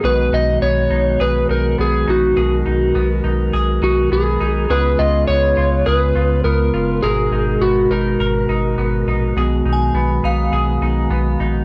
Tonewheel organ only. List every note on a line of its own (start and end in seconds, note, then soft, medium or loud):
0.04 4.66 D#3 medium
0.04 4.66 G#3 medium
0.04 2.35 B3 medium
0.04 4.67 F#4 medium
2.37 4.67 A#4 medium
4.70 7.01 C#3 medium
4.70 11.64 G#3 medium
4.70 7.01 B3 medium
4.70 7.01 F4 medium
7.03 9.34 B2 medium
7.03 11.64 F#4 medium
7.03 9.34 A#4 medium
9.36 11.64 D#3 medium
9.36 11.64 B3 medium